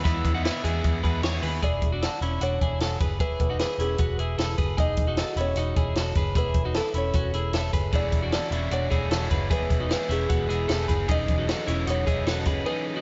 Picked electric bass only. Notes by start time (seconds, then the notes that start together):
0.05 E2
0.25 E2
0.64 E2
0.84 E2
1.04 E2
1.23 E2
1.43 D#2
1.63 E1
1.82 E1
2.21 E1
2.41 E1
2.61 E1
2.80 E1
3.00 F#1
3.20 E1
3.40 E1
3.78 E1
3.99 E1
4.18 E1
4.38 E1
4.58 F#1
4.78 E1
4.98 E1
5.36 E1
5.56 E1
5.76 E1
5.95 E1
6.15 F#1
6.35 E1
6.54 E1
6.94 E1
7.14 E1
7.33 E1
7.53 E1
7.73 F#1
7.93 E1
8.12 E1
8.51 E1
8.71 E1
8.91 E1
9.11 E1
9.31 F#1
9.51 E1
9.70 E1
10.09 E1
10.30 E1
10.49 E1
10.69 E1
10.89 F#1
11.09 E1
11.28 E1
11.68 E1
11.87 E1
12.07 E1
12.25 E1
12.46 F#1